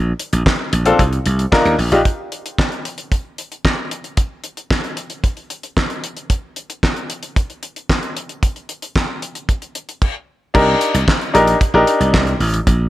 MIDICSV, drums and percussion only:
0, 0, Header, 1, 2, 480
1, 0, Start_track
1, 0, Tempo, 530973
1, 1855, Time_signature, 4, 2, 24, 8
1, 11653, End_track
2, 0, Start_track
2, 0, Title_t, "Drums"
2, 176, Note_on_c, 9, 42, 64
2, 266, Note_off_c, 9, 42, 0
2, 296, Note_on_c, 9, 42, 60
2, 387, Note_off_c, 9, 42, 0
2, 416, Note_on_c, 9, 36, 119
2, 422, Note_on_c, 9, 38, 114
2, 426, Note_on_c, 9, 39, 87
2, 507, Note_off_c, 9, 36, 0
2, 512, Note_off_c, 9, 38, 0
2, 516, Note_off_c, 9, 39, 0
2, 658, Note_on_c, 9, 42, 82
2, 748, Note_off_c, 9, 42, 0
2, 773, Note_on_c, 9, 42, 55
2, 863, Note_off_c, 9, 42, 0
2, 897, Note_on_c, 9, 36, 107
2, 899, Note_on_c, 9, 42, 88
2, 988, Note_off_c, 9, 36, 0
2, 989, Note_off_c, 9, 42, 0
2, 1018, Note_on_c, 9, 42, 40
2, 1108, Note_off_c, 9, 42, 0
2, 1135, Note_on_c, 9, 42, 72
2, 1226, Note_off_c, 9, 42, 0
2, 1257, Note_on_c, 9, 42, 46
2, 1348, Note_off_c, 9, 42, 0
2, 1376, Note_on_c, 9, 36, 116
2, 1381, Note_on_c, 9, 38, 111
2, 1385, Note_on_c, 9, 39, 94
2, 1467, Note_off_c, 9, 36, 0
2, 1471, Note_off_c, 9, 38, 0
2, 1475, Note_off_c, 9, 39, 0
2, 1494, Note_on_c, 9, 42, 35
2, 1585, Note_off_c, 9, 42, 0
2, 1618, Note_on_c, 9, 46, 85
2, 1709, Note_off_c, 9, 46, 0
2, 1735, Note_on_c, 9, 42, 52
2, 1826, Note_off_c, 9, 42, 0
2, 1857, Note_on_c, 9, 36, 112
2, 1857, Note_on_c, 9, 42, 91
2, 1947, Note_off_c, 9, 36, 0
2, 1947, Note_off_c, 9, 42, 0
2, 2097, Note_on_c, 9, 42, 58
2, 2187, Note_off_c, 9, 42, 0
2, 2221, Note_on_c, 9, 42, 54
2, 2311, Note_off_c, 9, 42, 0
2, 2337, Note_on_c, 9, 36, 108
2, 2345, Note_on_c, 9, 38, 96
2, 2349, Note_on_c, 9, 39, 80
2, 2427, Note_off_c, 9, 36, 0
2, 2435, Note_off_c, 9, 38, 0
2, 2439, Note_off_c, 9, 39, 0
2, 2458, Note_on_c, 9, 42, 30
2, 2548, Note_off_c, 9, 42, 0
2, 2579, Note_on_c, 9, 42, 74
2, 2669, Note_off_c, 9, 42, 0
2, 2692, Note_on_c, 9, 42, 52
2, 2783, Note_off_c, 9, 42, 0
2, 2817, Note_on_c, 9, 36, 98
2, 2819, Note_on_c, 9, 42, 80
2, 2908, Note_off_c, 9, 36, 0
2, 2910, Note_off_c, 9, 42, 0
2, 3058, Note_on_c, 9, 42, 68
2, 3149, Note_off_c, 9, 42, 0
2, 3179, Note_on_c, 9, 42, 43
2, 3269, Note_off_c, 9, 42, 0
2, 3296, Note_on_c, 9, 36, 97
2, 3302, Note_on_c, 9, 38, 101
2, 3306, Note_on_c, 9, 39, 82
2, 3387, Note_off_c, 9, 36, 0
2, 3392, Note_off_c, 9, 38, 0
2, 3396, Note_off_c, 9, 39, 0
2, 3538, Note_on_c, 9, 42, 78
2, 3628, Note_off_c, 9, 42, 0
2, 3654, Note_on_c, 9, 42, 44
2, 3744, Note_off_c, 9, 42, 0
2, 3772, Note_on_c, 9, 42, 90
2, 3774, Note_on_c, 9, 36, 114
2, 3862, Note_off_c, 9, 42, 0
2, 3864, Note_off_c, 9, 36, 0
2, 4010, Note_on_c, 9, 42, 61
2, 4101, Note_off_c, 9, 42, 0
2, 4133, Note_on_c, 9, 42, 49
2, 4223, Note_off_c, 9, 42, 0
2, 4253, Note_on_c, 9, 36, 111
2, 4256, Note_on_c, 9, 38, 104
2, 4260, Note_on_c, 9, 39, 85
2, 4344, Note_off_c, 9, 36, 0
2, 4347, Note_off_c, 9, 38, 0
2, 4351, Note_off_c, 9, 39, 0
2, 4374, Note_on_c, 9, 42, 31
2, 4465, Note_off_c, 9, 42, 0
2, 4492, Note_on_c, 9, 42, 71
2, 4582, Note_off_c, 9, 42, 0
2, 4608, Note_on_c, 9, 42, 51
2, 4699, Note_off_c, 9, 42, 0
2, 4734, Note_on_c, 9, 36, 104
2, 4735, Note_on_c, 9, 42, 74
2, 4824, Note_off_c, 9, 36, 0
2, 4825, Note_off_c, 9, 42, 0
2, 4852, Note_on_c, 9, 42, 35
2, 4943, Note_off_c, 9, 42, 0
2, 4974, Note_on_c, 9, 42, 63
2, 5064, Note_off_c, 9, 42, 0
2, 5093, Note_on_c, 9, 42, 46
2, 5183, Note_off_c, 9, 42, 0
2, 5213, Note_on_c, 9, 36, 98
2, 5216, Note_on_c, 9, 38, 100
2, 5220, Note_on_c, 9, 39, 82
2, 5304, Note_off_c, 9, 36, 0
2, 5307, Note_off_c, 9, 38, 0
2, 5311, Note_off_c, 9, 39, 0
2, 5332, Note_on_c, 9, 42, 34
2, 5423, Note_off_c, 9, 42, 0
2, 5457, Note_on_c, 9, 42, 80
2, 5547, Note_off_c, 9, 42, 0
2, 5574, Note_on_c, 9, 42, 42
2, 5664, Note_off_c, 9, 42, 0
2, 5694, Note_on_c, 9, 36, 110
2, 5694, Note_on_c, 9, 42, 99
2, 5784, Note_off_c, 9, 42, 0
2, 5785, Note_off_c, 9, 36, 0
2, 5932, Note_on_c, 9, 42, 59
2, 6022, Note_off_c, 9, 42, 0
2, 6055, Note_on_c, 9, 42, 52
2, 6145, Note_off_c, 9, 42, 0
2, 6174, Note_on_c, 9, 36, 106
2, 6179, Note_on_c, 9, 38, 99
2, 6183, Note_on_c, 9, 39, 82
2, 6265, Note_off_c, 9, 36, 0
2, 6270, Note_off_c, 9, 38, 0
2, 6274, Note_off_c, 9, 39, 0
2, 6296, Note_on_c, 9, 42, 33
2, 6386, Note_off_c, 9, 42, 0
2, 6416, Note_on_c, 9, 42, 74
2, 6506, Note_off_c, 9, 42, 0
2, 6533, Note_on_c, 9, 42, 51
2, 6623, Note_off_c, 9, 42, 0
2, 6657, Note_on_c, 9, 36, 108
2, 6660, Note_on_c, 9, 42, 77
2, 6747, Note_off_c, 9, 36, 0
2, 6751, Note_off_c, 9, 42, 0
2, 6778, Note_on_c, 9, 42, 36
2, 6868, Note_off_c, 9, 42, 0
2, 6894, Note_on_c, 9, 42, 68
2, 6985, Note_off_c, 9, 42, 0
2, 7018, Note_on_c, 9, 42, 42
2, 7108, Note_off_c, 9, 42, 0
2, 7137, Note_on_c, 9, 36, 98
2, 7142, Note_on_c, 9, 38, 101
2, 7146, Note_on_c, 9, 39, 82
2, 7227, Note_off_c, 9, 36, 0
2, 7233, Note_off_c, 9, 38, 0
2, 7237, Note_off_c, 9, 39, 0
2, 7256, Note_on_c, 9, 42, 34
2, 7347, Note_off_c, 9, 42, 0
2, 7382, Note_on_c, 9, 42, 77
2, 7472, Note_off_c, 9, 42, 0
2, 7497, Note_on_c, 9, 42, 45
2, 7587, Note_off_c, 9, 42, 0
2, 7618, Note_on_c, 9, 36, 107
2, 7619, Note_on_c, 9, 42, 96
2, 7708, Note_off_c, 9, 36, 0
2, 7709, Note_off_c, 9, 42, 0
2, 7738, Note_on_c, 9, 42, 34
2, 7829, Note_off_c, 9, 42, 0
2, 7856, Note_on_c, 9, 42, 59
2, 7946, Note_off_c, 9, 42, 0
2, 7976, Note_on_c, 9, 42, 52
2, 8067, Note_off_c, 9, 42, 0
2, 8096, Note_on_c, 9, 36, 108
2, 8101, Note_on_c, 9, 38, 96
2, 8105, Note_on_c, 9, 39, 78
2, 8186, Note_off_c, 9, 36, 0
2, 8191, Note_off_c, 9, 38, 0
2, 8195, Note_off_c, 9, 39, 0
2, 8338, Note_on_c, 9, 42, 69
2, 8428, Note_off_c, 9, 42, 0
2, 8455, Note_on_c, 9, 42, 49
2, 8546, Note_off_c, 9, 42, 0
2, 8577, Note_on_c, 9, 36, 99
2, 8579, Note_on_c, 9, 42, 74
2, 8667, Note_off_c, 9, 36, 0
2, 8669, Note_off_c, 9, 42, 0
2, 8696, Note_on_c, 9, 42, 36
2, 8786, Note_off_c, 9, 42, 0
2, 8815, Note_on_c, 9, 42, 67
2, 8906, Note_off_c, 9, 42, 0
2, 8938, Note_on_c, 9, 42, 45
2, 9028, Note_off_c, 9, 42, 0
2, 9056, Note_on_c, 9, 36, 98
2, 9056, Note_on_c, 9, 49, 83
2, 9146, Note_off_c, 9, 36, 0
2, 9146, Note_off_c, 9, 49, 0
2, 9534, Note_on_c, 9, 49, 103
2, 9535, Note_on_c, 9, 36, 127
2, 9625, Note_off_c, 9, 49, 0
2, 9626, Note_off_c, 9, 36, 0
2, 9772, Note_on_c, 9, 42, 67
2, 9862, Note_off_c, 9, 42, 0
2, 9896, Note_on_c, 9, 42, 60
2, 9986, Note_off_c, 9, 42, 0
2, 10014, Note_on_c, 9, 36, 126
2, 10020, Note_on_c, 9, 38, 110
2, 10024, Note_on_c, 9, 39, 91
2, 10104, Note_off_c, 9, 36, 0
2, 10110, Note_off_c, 9, 38, 0
2, 10114, Note_off_c, 9, 39, 0
2, 10137, Note_on_c, 9, 42, 34
2, 10227, Note_off_c, 9, 42, 0
2, 10258, Note_on_c, 9, 42, 79
2, 10349, Note_off_c, 9, 42, 0
2, 10373, Note_on_c, 9, 42, 56
2, 10463, Note_off_c, 9, 42, 0
2, 10495, Note_on_c, 9, 36, 112
2, 10497, Note_on_c, 9, 42, 86
2, 10585, Note_off_c, 9, 36, 0
2, 10588, Note_off_c, 9, 42, 0
2, 10734, Note_on_c, 9, 42, 74
2, 10824, Note_off_c, 9, 42, 0
2, 10855, Note_on_c, 9, 42, 48
2, 10946, Note_off_c, 9, 42, 0
2, 10973, Note_on_c, 9, 36, 118
2, 10977, Note_on_c, 9, 38, 110
2, 10981, Note_on_c, 9, 39, 95
2, 11064, Note_off_c, 9, 36, 0
2, 11068, Note_off_c, 9, 38, 0
2, 11072, Note_off_c, 9, 39, 0
2, 11091, Note_on_c, 9, 42, 37
2, 11182, Note_off_c, 9, 42, 0
2, 11214, Note_on_c, 9, 46, 88
2, 11305, Note_off_c, 9, 46, 0
2, 11333, Note_on_c, 9, 42, 53
2, 11424, Note_off_c, 9, 42, 0
2, 11454, Note_on_c, 9, 36, 120
2, 11454, Note_on_c, 9, 42, 100
2, 11544, Note_off_c, 9, 36, 0
2, 11545, Note_off_c, 9, 42, 0
2, 11653, End_track
0, 0, End_of_file